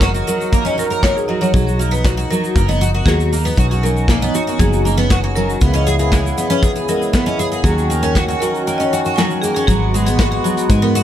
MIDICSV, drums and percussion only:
0, 0, Header, 1, 2, 480
1, 0, Start_track
1, 0, Key_signature, 5, "minor"
1, 0, Tempo, 508475
1, 1458, Time_signature, 4, 2, 24, 8
1, 10413, End_track
2, 0, Start_track
2, 0, Title_t, "Drums"
2, 7, Note_on_c, 9, 36, 99
2, 23, Note_on_c, 9, 82, 57
2, 25, Note_on_c, 9, 38, 102
2, 102, Note_off_c, 9, 36, 0
2, 118, Note_off_c, 9, 82, 0
2, 119, Note_off_c, 9, 38, 0
2, 143, Note_on_c, 9, 82, 45
2, 237, Note_off_c, 9, 82, 0
2, 265, Note_on_c, 9, 82, 92
2, 359, Note_off_c, 9, 82, 0
2, 388, Note_on_c, 9, 82, 48
2, 482, Note_off_c, 9, 82, 0
2, 497, Note_on_c, 9, 36, 99
2, 505, Note_on_c, 9, 82, 56
2, 591, Note_off_c, 9, 36, 0
2, 599, Note_off_c, 9, 82, 0
2, 619, Note_on_c, 9, 82, 38
2, 714, Note_off_c, 9, 82, 0
2, 746, Note_on_c, 9, 82, 79
2, 840, Note_off_c, 9, 82, 0
2, 865, Note_on_c, 9, 82, 41
2, 959, Note_off_c, 9, 82, 0
2, 971, Note_on_c, 9, 36, 88
2, 979, Note_on_c, 9, 38, 98
2, 992, Note_on_c, 9, 82, 51
2, 1065, Note_off_c, 9, 36, 0
2, 1074, Note_off_c, 9, 38, 0
2, 1086, Note_off_c, 9, 82, 0
2, 1108, Note_on_c, 9, 82, 42
2, 1202, Note_off_c, 9, 82, 0
2, 1349, Note_on_c, 9, 82, 43
2, 1444, Note_off_c, 9, 82, 0
2, 1452, Note_on_c, 9, 36, 103
2, 1472, Note_on_c, 9, 82, 51
2, 1546, Note_off_c, 9, 36, 0
2, 1566, Note_off_c, 9, 82, 0
2, 1588, Note_on_c, 9, 82, 43
2, 1683, Note_off_c, 9, 82, 0
2, 1706, Note_on_c, 9, 82, 76
2, 1801, Note_off_c, 9, 82, 0
2, 1829, Note_on_c, 9, 82, 51
2, 1924, Note_off_c, 9, 82, 0
2, 1930, Note_on_c, 9, 36, 109
2, 1935, Note_on_c, 9, 38, 91
2, 1945, Note_on_c, 9, 82, 58
2, 2025, Note_off_c, 9, 36, 0
2, 2030, Note_off_c, 9, 38, 0
2, 2040, Note_off_c, 9, 82, 0
2, 2070, Note_on_c, 9, 82, 38
2, 2165, Note_off_c, 9, 82, 0
2, 2194, Note_on_c, 9, 82, 85
2, 2288, Note_off_c, 9, 82, 0
2, 2307, Note_on_c, 9, 82, 49
2, 2401, Note_off_c, 9, 82, 0
2, 2414, Note_on_c, 9, 36, 105
2, 2427, Note_on_c, 9, 82, 58
2, 2508, Note_off_c, 9, 36, 0
2, 2522, Note_off_c, 9, 82, 0
2, 2556, Note_on_c, 9, 82, 40
2, 2650, Note_off_c, 9, 82, 0
2, 2668, Note_on_c, 9, 82, 80
2, 2763, Note_off_c, 9, 82, 0
2, 2885, Note_on_c, 9, 36, 92
2, 2905, Note_on_c, 9, 82, 53
2, 2907, Note_on_c, 9, 38, 90
2, 2979, Note_off_c, 9, 36, 0
2, 3000, Note_off_c, 9, 82, 0
2, 3002, Note_off_c, 9, 38, 0
2, 3021, Note_on_c, 9, 82, 34
2, 3115, Note_off_c, 9, 82, 0
2, 3144, Note_on_c, 9, 82, 76
2, 3174, Note_off_c, 9, 82, 0
2, 3174, Note_on_c, 9, 82, 65
2, 3200, Note_off_c, 9, 82, 0
2, 3200, Note_on_c, 9, 82, 53
2, 3236, Note_off_c, 9, 82, 0
2, 3236, Note_on_c, 9, 82, 41
2, 3267, Note_off_c, 9, 82, 0
2, 3267, Note_on_c, 9, 82, 31
2, 3271, Note_off_c, 9, 82, 0
2, 3271, Note_on_c, 9, 82, 49
2, 3293, Note_off_c, 9, 82, 0
2, 3293, Note_on_c, 9, 82, 26
2, 3354, Note_off_c, 9, 82, 0
2, 3354, Note_on_c, 9, 82, 18
2, 3374, Note_on_c, 9, 36, 80
2, 3395, Note_off_c, 9, 82, 0
2, 3395, Note_on_c, 9, 82, 52
2, 3468, Note_off_c, 9, 36, 0
2, 3490, Note_off_c, 9, 82, 0
2, 3511, Note_on_c, 9, 82, 40
2, 3605, Note_off_c, 9, 82, 0
2, 3639, Note_on_c, 9, 82, 73
2, 3733, Note_off_c, 9, 82, 0
2, 3747, Note_on_c, 9, 82, 41
2, 3841, Note_off_c, 9, 82, 0
2, 3852, Note_on_c, 9, 36, 102
2, 3861, Note_on_c, 9, 38, 82
2, 3865, Note_on_c, 9, 82, 52
2, 3946, Note_off_c, 9, 36, 0
2, 3956, Note_off_c, 9, 38, 0
2, 3959, Note_off_c, 9, 82, 0
2, 3994, Note_on_c, 9, 82, 36
2, 4089, Note_off_c, 9, 82, 0
2, 4105, Note_on_c, 9, 82, 81
2, 4199, Note_off_c, 9, 82, 0
2, 4232, Note_on_c, 9, 82, 44
2, 4326, Note_off_c, 9, 82, 0
2, 4337, Note_on_c, 9, 36, 97
2, 4345, Note_on_c, 9, 82, 59
2, 4432, Note_off_c, 9, 36, 0
2, 4440, Note_off_c, 9, 82, 0
2, 4467, Note_on_c, 9, 82, 45
2, 4561, Note_off_c, 9, 82, 0
2, 4591, Note_on_c, 9, 82, 79
2, 4686, Note_off_c, 9, 82, 0
2, 4705, Note_on_c, 9, 82, 40
2, 4799, Note_off_c, 9, 82, 0
2, 4818, Note_on_c, 9, 36, 100
2, 4820, Note_on_c, 9, 38, 93
2, 4822, Note_on_c, 9, 82, 47
2, 4912, Note_off_c, 9, 36, 0
2, 4914, Note_off_c, 9, 38, 0
2, 4916, Note_off_c, 9, 82, 0
2, 5060, Note_on_c, 9, 82, 77
2, 5155, Note_off_c, 9, 82, 0
2, 5189, Note_on_c, 9, 82, 48
2, 5283, Note_off_c, 9, 82, 0
2, 5294, Note_on_c, 9, 82, 44
2, 5300, Note_on_c, 9, 36, 91
2, 5388, Note_off_c, 9, 82, 0
2, 5395, Note_off_c, 9, 36, 0
2, 5424, Note_on_c, 9, 82, 43
2, 5518, Note_off_c, 9, 82, 0
2, 5543, Note_on_c, 9, 82, 70
2, 5637, Note_off_c, 9, 82, 0
2, 5656, Note_on_c, 9, 82, 46
2, 5750, Note_off_c, 9, 82, 0
2, 5775, Note_on_c, 9, 36, 88
2, 5781, Note_on_c, 9, 38, 91
2, 5785, Note_on_c, 9, 82, 51
2, 5870, Note_off_c, 9, 36, 0
2, 5876, Note_off_c, 9, 38, 0
2, 5879, Note_off_c, 9, 82, 0
2, 5916, Note_on_c, 9, 82, 43
2, 6011, Note_off_c, 9, 82, 0
2, 6022, Note_on_c, 9, 82, 82
2, 6117, Note_off_c, 9, 82, 0
2, 6143, Note_on_c, 9, 82, 51
2, 6237, Note_off_c, 9, 82, 0
2, 6255, Note_on_c, 9, 36, 97
2, 6263, Note_on_c, 9, 82, 54
2, 6350, Note_off_c, 9, 36, 0
2, 6357, Note_off_c, 9, 82, 0
2, 6379, Note_on_c, 9, 82, 40
2, 6473, Note_off_c, 9, 82, 0
2, 6500, Note_on_c, 9, 82, 70
2, 6594, Note_off_c, 9, 82, 0
2, 6628, Note_on_c, 9, 82, 45
2, 6723, Note_off_c, 9, 82, 0
2, 6736, Note_on_c, 9, 36, 87
2, 6741, Note_on_c, 9, 82, 54
2, 6744, Note_on_c, 9, 38, 91
2, 6831, Note_off_c, 9, 36, 0
2, 6835, Note_off_c, 9, 82, 0
2, 6839, Note_off_c, 9, 38, 0
2, 6867, Note_on_c, 9, 82, 35
2, 6961, Note_off_c, 9, 82, 0
2, 6986, Note_on_c, 9, 82, 73
2, 7080, Note_off_c, 9, 82, 0
2, 7104, Note_on_c, 9, 82, 47
2, 7199, Note_off_c, 9, 82, 0
2, 7211, Note_on_c, 9, 36, 98
2, 7228, Note_on_c, 9, 82, 49
2, 7305, Note_off_c, 9, 36, 0
2, 7322, Note_off_c, 9, 82, 0
2, 7347, Note_on_c, 9, 82, 43
2, 7442, Note_off_c, 9, 82, 0
2, 7469, Note_on_c, 9, 82, 79
2, 7563, Note_off_c, 9, 82, 0
2, 7578, Note_on_c, 9, 82, 47
2, 7673, Note_off_c, 9, 82, 0
2, 7696, Note_on_c, 9, 36, 92
2, 7705, Note_on_c, 9, 38, 107
2, 7706, Note_on_c, 9, 82, 53
2, 7790, Note_off_c, 9, 36, 0
2, 7800, Note_off_c, 9, 38, 0
2, 7800, Note_off_c, 9, 82, 0
2, 7833, Note_on_c, 9, 82, 41
2, 7928, Note_off_c, 9, 82, 0
2, 7951, Note_on_c, 9, 82, 81
2, 8045, Note_off_c, 9, 82, 0
2, 8072, Note_on_c, 9, 82, 42
2, 8166, Note_off_c, 9, 82, 0
2, 8191, Note_on_c, 9, 82, 64
2, 8285, Note_off_c, 9, 82, 0
2, 8308, Note_on_c, 9, 82, 42
2, 8402, Note_off_c, 9, 82, 0
2, 8433, Note_on_c, 9, 82, 81
2, 8528, Note_off_c, 9, 82, 0
2, 8545, Note_on_c, 9, 82, 41
2, 8639, Note_off_c, 9, 82, 0
2, 8661, Note_on_c, 9, 82, 53
2, 8666, Note_on_c, 9, 38, 87
2, 8756, Note_off_c, 9, 82, 0
2, 8761, Note_off_c, 9, 38, 0
2, 8783, Note_on_c, 9, 82, 38
2, 8877, Note_off_c, 9, 82, 0
2, 8904, Note_on_c, 9, 82, 84
2, 8999, Note_off_c, 9, 82, 0
2, 9022, Note_on_c, 9, 82, 45
2, 9116, Note_off_c, 9, 82, 0
2, 9138, Note_on_c, 9, 36, 87
2, 9151, Note_on_c, 9, 42, 51
2, 9154, Note_on_c, 9, 82, 46
2, 9232, Note_off_c, 9, 36, 0
2, 9245, Note_off_c, 9, 42, 0
2, 9248, Note_off_c, 9, 82, 0
2, 9394, Note_on_c, 9, 82, 83
2, 9488, Note_off_c, 9, 82, 0
2, 9504, Note_on_c, 9, 42, 61
2, 9511, Note_on_c, 9, 82, 64
2, 9598, Note_off_c, 9, 42, 0
2, 9606, Note_off_c, 9, 82, 0
2, 9618, Note_on_c, 9, 36, 103
2, 9621, Note_on_c, 9, 38, 103
2, 9628, Note_on_c, 9, 82, 48
2, 9629, Note_on_c, 9, 42, 61
2, 9712, Note_off_c, 9, 36, 0
2, 9715, Note_off_c, 9, 38, 0
2, 9722, Note_off_c, 9, 82, 0
2, 9723, Note_off_c, 9, 42, 0
2, 9870, Note_on_c, 9, 82, 91
2, 9964, Note_off_c, 9, 82, 0
2, 9979, Note_on_c, 9, 42, 66
2, 9990, Note_on_c, 9, 82, 59
2, 10074, Note_off_c, 9, 42, 0
2, 10085, Note_off_c, 9, 82, 0
2, 10097, Note_on_c, 9, 36, 113
2, 10097, Note_on_c, 9, 42, 61
2, 10104, Note_on_c, 9, 82, 54
2, 10192, Note_off_c, 9, 36, 0
2, 10192, Note_off_c, 9, 42, 0
2, 10198, Note_off_c, 9, 82, 0
2, 10343, Note_on_c, 9, 82, 80
2, 10413, Note_off_c, 9, 82, 0
2, 10413, End_track
0, 0, End_of_file